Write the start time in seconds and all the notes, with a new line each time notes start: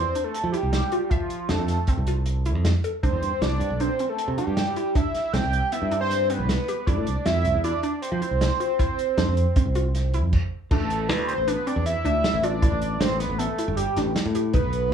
Already playing: E4 C5
0.15 D4, closed hi-hat
0.24 A4
0.34 closed hi-hat
0.44 F3
0.52 E4 G4, closed hi-hat
0.63 C2
0.73 snare, closed hi-hat
0.92 F4, closed hi-hat
1.10 F4 E5, kick, closed hi-hat
1.30 closed hi-hat
1.49 F2 D4 A4, snare, closed hi-hat
1.59 F2
1.68 snare, closed hi-hat
1.87 C4, kick, closed hi-hat
1.98 C2
2.07 F4, closed hi-hat
2.26 closed hi-hat
2.45 E4, closed hi-hat
2.55 F2
2.65 snare, closed hi-hat
2.84 A4, closed hi-hat
3.03 C2 D4 C5, kick, closed hi-hat
3.12 E2
3.22 G2, closed hi-hat
3.41 C2 E4 D5, snare, closed hi-hat
3.60 G2, closed hi-hat
3.70 B1
3.80 D4 C5, closed hi-hat
3.99 C4, closed hi-hat
4.09 A4
4.18 closed hi-hat
4.28 C3
4.37 D4 G4, closed hi-hat
4.47 G2
4.57 snare, closed hi-hat
4.76 E4, closed hi-hat
4.95 D4 E5, kick, closed hi-hat
5.15 snare, closed hi-hat
5.33 C2 C4 G5, snare, closed hi-hat
5.43 C2
5.53 closed hi-hat
5.72 B3 E5, closed hi-hat
5.82 G2
5.91 D4, closed hi-hat
6.01 C5
6.11 snare, closed hi-hat
6.29 C4 B4, closed hi-hat
6.39 C2
6.49 snare, closed hi-hat
6.68 G4, closed hi-hat
6.86 F2 E4 D5, kick, closed hi-hat
6.97 A2
7.07 C2, closed hi-hat
7.26 F2 F4 E5, snare, closed hi-hat
7.45 C2, closed hi-hat
7.54 E2
7.64 E4 D5, closed hi-hat
7.83 D4, closed hi-hat
8.02 C5, closed hi-hat
8.12 F3
8.22 E4, closed hi-hat
8.31 C2
8.41 snare, closed hi-hat
8.60 F4, closed hi-hat
8.79 E4, kick, closed hi-hat
8.99 closed hi-hat
9.17 F2 D4, snare, closed hi-hat
9.27 F2
9.37 closed hi-hat
9.56 C4, kick, closed hi-hat
9.66 C2
9.75 F4, closed hi-hat
9.95 snare, closed hi-hat
10.14 E4, closed hi-hat
10.23 F2
10.33 kick, crash
10.71 A1 D4 A4, kick, crash
10.80 A1
10.90 closed hi-hat
11.08 D2 E4 B4, snare, closed hi-hat
11.28 C5, closed hi-hat
11.38 A1
11.48 D4 B4, closed hi-hat
11.67 C4 D5, closed hi-hat
11.76 E2
11.86 E5, closed hi-hat
12.05 D2 D4, closed hi-hat
12.24 snare, closed hi-hat
12.34 A1
12.43 F4 D5, closed hi-hat
12.62 E4, kick, closed hi-hat
12.72 A1
12.82 closed hi-hat
13.01 A1 D4 C5, snare, closed hi-hat
13.19 B4, snare, closed hi-hat
13.29 A1
13.38 B3 A4, closed hi-hat
13.59 E4, closed hi-hat
13.68 G1
13.76 G4, closed hi-hat
13.97 A1 D4, snare, closed hi-hat
14.16 snare, closed hi-hat
14.26 A2
14.35 G4, closed hi-hat
14.53 B1 D#4 B4, kick, closed hi-hat
14.64 B1
14.73 closed hi-hat